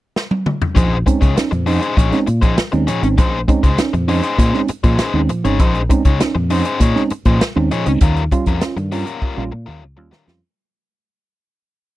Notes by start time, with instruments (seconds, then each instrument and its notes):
0.16 snare
0.31 high tom
0.46 mid tom
0.62 floor tom
0.75 fingered electric bass A#1, tine electric piano A#2 F3, overdriven electric guitar C#4 D#4 G#4 C5, kick, closed hi-hat
1.06 tine electric piano G#3 C4 C#4 D#4, muted overdriven electric guitar stroke, kick, closed hi-hat
1.21 fingered electric bass C#2, overdriven electric guitar C#4 D#4 G#4 C#5, tine electric piano C#4 D#4, kick, closed hi-hat
1.36 tine electric piano C#4 D#4, muted overdriven electric guitar stroke, muted fingered electric bass stroke, snare, closed hi-hat
1.51 fingered electric bass F2, tine electric piano A#2 F3, muted overdriven electric guitar stroke, closed hi-hat
1.66 overdriven electric guitar C#4 D#4 G#4 C5, tine electric piano C#4 D#4, open hi-hat
1.81 overdriven electric guitar C#4 D#4 G#4 C5, closed hi-hat
1.97 fingered electric bass A#1, overdriven electric guitar C#4 D#4 G#4 C#5, kick, closed hi-hat
2.12 tine electric piano G#3 C4 C#4 D#4, snare, closed hi-hat
2.27 fingered electric bass A#2, muted overdriven electric guitar stroke, closed hi-hat
2.41 tine electric piano A#2 F3, overdriven electric guitar C#4 D#4 G#4 C5, kick, closed hi-hat
2.57 muted overdriven electric guitar stroke, muted fingered electric bass stroke, snare, closed hi-hat
2.72 fingered electric bass D#2, tine electric piano G#3 C4 C#4 D#4, muted overdriven electric guitar stroke, closed hi-hat
2.87 tine electric piano A#2 F3, overdriven electric guitar C#4 D#4 G#4 C#5, closed hi-hat
3.02 fingered electric bass G#1, tine electric piano G#3 C4 C#4 D#4, muted overdriven electric guitar stroke, closed hi-hat
3.18 fingered electric bass A#1, tine electric piano A#2 F3, overdriven electric guitar C#4 D#4 G#4 C5, kick, closed hi-hat
3.48 tine electric piano G#3 C4 C#4 D#4, muted overdriven electric guitar stroke, kick, closed hi-hat
3.63 fingered electric bass C#2, overdriven electric guitar C#4 D#4 G#4 C5, kick, closed hi-hat
3.78 tine electric piano C#4 D#4, muted overdriven electric guitar stroke, muted fingered electric bass stroke, snare, closed hi-hat
3.93 fingered electric bass F2, tine electric piano A#2 F3, muted overdriven electric guitar stroke, closed hi-hat
4.08 tine electric piano C#4 D#4, overdriven electric guitar C#4 D#4 G#4 C5, open hi-hat
4.23 overdriven electric guitar C#4 D#4 G#4 C5, closed hi-hat
4.38 fingered electric bass A#2, overdriven electric guitar C#4 D#4 G#4 C5, kick, closed hi-hat
4.54 tine electric piano G#3 C4 C#4 D#4, snare
4.68 muted overdriven electric guitar stroke, muted fingered electric bass stroke, closed hi-hat
4.84 tine electric piano A#2 F3, fingered electric bass A#2, overdriven electric guitar C#4 D#4 G#4 C5, kick, closed hi-hat
4.98 overdriven electric guitar C#4 D#4 G#4 C5, muted fingered electric bass stroke, snare, closed hi-hat
5.14 fingered electric bass D#2, tine electric piano G#3 C4 C#4 D#4
5.29 tine electric piano A#2 F3, muted overdriven electric guitar stroke, closed hi-hat
5.44 fingered electric bass G#1, tine electric piano G#3 C4 C#4 D#4, overdriven electric guitar C#4 D#4 G#4 C#5, closed hi-hat
5.59 fingered electric bass A#1, tine electric piano A#2 F3, overdriven electric guitar C#4 D#4 G#4 C5, kick, closed hi-hat
5.75 closed hi-hat
5.89 tine electric piano G#3 C4 C#4 D#4, muted overdriven electric guitar stroke, kick, closed hi-hat
6.05 fingered electric bass C#2, overdriven electric guitar C#4 D#4 G#4 C#5, tine electric piano D#4, kick, closed hi-hat
6.19 tine electric piano C#4 D#4, muted overdriven electric guitar stroke, muted fingered electric bass stroke, snare, closed hi-hat
6.35 fingered electric bass F2, tine electric piano A#2 F3, muted overdriven electric guitar stroke
6.50 tine electric piano C#4 D#4, overdriven electric guitar C#4 D#4 G#4 C5, open hi-hat
6.65 overdriven electric guitar C#4 D#4 G#4 C5, closed hi-hat
6.80 fingered electric bass A#2, overdriven electric guitar C#4 D#4 G#4 C#5, kick, closed hi-hat
6.96 tine electric piano G#3 C4 C#4 D#4, snare
7.10 muted overdriven electric guitar stroke, muted fingered electric bass stroke, closed hi-hat
7.25 fingered electric bass A#2, tine electric piano A#2 F3, overdriven electric guitar C#4 D#4 G#4 C5, kick, closed hi-hat
7.41 muted fingered electric bass stroke, muted overdriven electric guitar stroke, snare, closed hi-hat
7.56 fingered electric bass D#2, tine electric piano G#3 C4 C#4 D#4, muted overdriven electric guitar stroke
7.71 tine electric piano A#2 F3, overdriven electric guitar C#4 D#4 G#4 C#5, closed hi-hat
7.86 fingered electric bass C#2, tine electric piano G#3 C4 C#4 D#4, muted overdriven electric guitar stroke, closed hi-hat
8.01 fingered electric bass D#2, tine electric piano D#3, overdriven electric guitar G3 C#4 F4 A#4, kick, closed hi-hat
8.16 closed hi-hat
8.31 tine electric piano G3 C#4 F4, muted overdriven electric guitar stroke, kick, closed hi-hat
8.46 fingered electric bass F2, overdriven electric guitar G3 C#4 F4 A#4, kick, closed hi-hat
8.61 tine electric piano C#4 F4, muted overdriven electric guitar stroke, muted fingered electric bass stroke, snare, closed hi-hat
8.76 fingered electric bass G2, tine electric piano D#3, muted overdriven electric guitar stroke, closed hi-hat
8.92 overdriven electric guitar G3 C#4 F4 A#4, tine electric piano C#4 F4, open hi-hat
9.07 overdriven electric guitar G3 C#4 F4 A#4, closed hi-hat
9.21 overdriven electric guitar G3 C#4 F4 A#4, kick
9.37 fingered electric bass A#1, tine electric piano G3 C#4 F4
9.52 fingered electric bass A#2, muted overdriven electric guitar stroke
9.66 fingered electric bass D#2, tine electric piano D#3, overdriven electric guitar G3 C#4 F4 A#4
9.83 fingered electric bass C#2
9.97 fingered electric bass D#2, tine electric piano G3 C#4 F4, muted overdriven electric guitar stroke
10.11 tine electric piano D#3, overdriven electric guitar G3 C#4 F4 A#4, snare
10.27 fingered electric bass F2, tine electric piano G3 C#4 F4, muted overdriven electric guitar stroke, snare